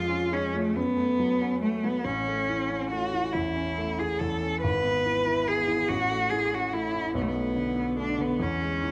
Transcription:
Already playing: F2 F3 G#3 F4
0.09 C#4
0.32 G#3 C#4
0.54 F3 A3
0.76 F#2 B3
0.97 A3
1.20 F#3
1.41 C#4
1.62 A3
1.84 F#3 B3
2.05 A1 C#4
2.28 A3
2.49 E3
2.70 C#4
2.90 A3 F#4
3.14 E3
3.33 E2 E4
3.55 C#4
3.78 A3
3.99 E3 G#4
4.19 E2 A4
4.43 C#4
4.61 G#1 B4
4.83 B3
5.06 E3
5.26 E4
5.47 B3 G#4
5.68 E3
5.89 A1 F#4
6.10 A3
6.30 E3 G#4
6.53 C#4 F#4
6.73 A3 E4
6.94 E3
7.14 B1 B3
7.22 A3
7.28 B3
7.35 A3
7.56 D3
7.76 B3
7.97 A3 D4
8.18 D3 B3
8.40 E2 C#4
8.62 G#3
8.83 E3

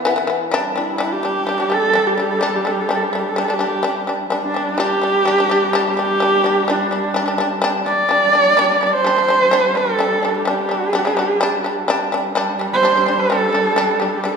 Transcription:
0.05 E3 B3
0.16 E3 B3
0.27 E3 B3
0.51 G3 D4
0.76 G3 D4 E4
0.98 G3 D4
1.13 G4
1.23 G3 D4
1.47 G3 D4
1.58 G3 D4
1.70 G3 D4
1.74 A4
1.93 G3 D4
2.07 G4
2.15 G3 A4
2.20 D4 G4
2.31 A4
2.39 G3 D4 G4
2.48 A4
2.56 G4
2.64 G3 D4 A4
2.71 G4
2.81 A4
2.88 G3 D4 G4
2.96 A4
3.04 G4
3.12 G3 D4 A4
3.19 G4
3.28 A4
3.36 G3 D4 G4
3.45 G3 A4
3.50 D4
3.54 G4
3.59 G3 D4
3.83 G3 D4
4.07 G3 D4
4.30 G3 D4
4.44 D4
4.54 G3 D4
4.78 G3 D4 G4
5.02 G3 D4
5.25 G3 D4
5.38 G3 D4
5.49 G3 D4
5.73 G3 D4
5.97 G3 D4 G4
6.20 G3 D4
6.44 G3 D4
6.68 G3 D4
6.91 G3 D4
7.14 G3 D4
7.26 G3 D4
7.38 G3 D4
7.62 G3 D4
7.86 G3 D4 D5
8.09 G3 D4
8.33 G3 D4
8.57 G3 D4
8.81 G3 D4
8.87 D5
8.93 C5
9.04 G3 D4
9.17 G3 D4
9.28 G3 D4
9.51 G3 D4
9.75 G3 D4 A4
9.99 G3 D4
10.23 G3 D4
10.36 G4
10.45 G3 D4
10.69 G3 D4
10.93 G3 D4
10.99 G#4
11.05 G3 D4
11.16 G3 D4 G4
11.35 G#4
11.41 G3 D4
11.52 G4
11.64 G3 D4
11.88 G3 D4
12.12 G3 D4
12.35 G3 D4
12.59 G3 D4
12.74 C5
12.83 G3 D4
12.96 G3 D4
13.06 G3 D4
13.20 A4
13.30 G3 D4
13.53 G3 D4
13.76 G3 D4
14.00 G3 D4 G4
14.09 A4
14.17 G4
14.24 G3 D4 A4

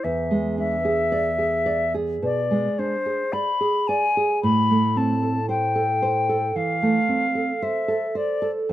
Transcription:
0.04 E2 E5
0.31 G#3
0.58 D4 E5
0.85 G#4
1.12 D5
1.38 G#4
1.66 D5
1.94 G#4
2.22 B2 D5
2.51 G#3
2.79 D4 C5
3.06 G#4
3.33 D5 B5
3.61 G#4
3.88 D5 G#5
4.17 G#4
4.43 A2 B5
4.71 A3
4.96 C4 A5
5.23 A4
5.49 C5 G5
5.75 A4
6.02 C5
6.29 A4
6.56 E3 F5
6.82 A3
7.09 C4
7.35 A4
7.62 C5 E5
7.88 A4
8.15 C5 D5
8.42 A4
8.69 F2

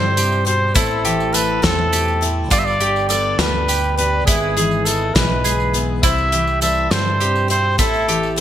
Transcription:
Already playing: G2 C3 D3 E3 G3 C4 E4 G4 A4 C5
0.16 C3 G4, closed hi-hat, tambourine
0.32 tambourine
0.45 B2 G3 C4 G4 C5, closed hi-hat
0.74 A1 A2 E3 A3 C4 E4 A4, kick, closed hi-hat, tambourine
0.91 tambourine
1.05 E3 G4, closed hi-hat, tambourine
1.20 tambourine
1.33 A3 C4 E4 A4 B4, closed hi-hat, tambourine
1.62 E2 A2 C3 E3 A3 C4 E4 A4, kick, snare, closed hi-hat
1.93 B2 G4, closed hi-hat, tambourine
2.08 tambourine
2.21 A2 A3 C4 E4 A4, closed hi-hat
2.50 G1 G2 G3 D4 F4 G4 B4 D5, kick, closed hi-hat, tambourine
2.59 E5
2.65 D5, tambourine
2.80 D3 G4, closed hi-hat, tambourine
2.96 tambourine
3.09 G3 B3 D4 G4 A4 B4 D5, closed hi-hat, tambourine
3.39 D2 D3 G3 D4 G4 B4, snare, closed hi-hat
3.68 B3 G4, closed hi-hat, tambourine
3.84 tambourine
3.97 D4 G4 B4, closed hi-hat
4.26 G#1 G#2 G#3 B3 E4 G#4 B4, kick, closed hi-hat, tambourine
4.57 E3 G#4, closed hi-hat, tambourine
4.71 tambourine
4.85 G#3 E4 G#4 A4 B4, closed hi-hat, tambourine
5.15 B1 E3 G#3 E4 G#4 B4, kick, snare, closed hi-hat, tambourine
5.44 G#3 G#4, closed hi-hat, tambourine
5.60 tambourine
5.74 B3 E4 G#4 B4, closed hi-hat
6.03 C2 C3 E3 G3 C4 E4 C5 E5, kick, closed hi-hat, tambourine
6.18 tambourine
6.32 E3 G4, closed hi-hat, tambourine
6.47 tambourine
6.61 G3 C4 E4 A4 C5 E5, closed hi-hat, tambourine
6.91 G2 C3 D3 E3 G3 C4 E4 C5, snare, closed hi-hat
7.20 C3 G4, closed hi-hat
7.35 tambourine
7.48 B2 G3 C4 E4 C5, closed hi-hat
7.78 A1 A2 E3 A3 C4 E4 A4, kick, closed hi-hat, tambourine
7.93 tambourine
8.08 E3 G4, closed hi-hat, tambourine
8.23 tambourine
8.36 A3 A4, closed hi-hat

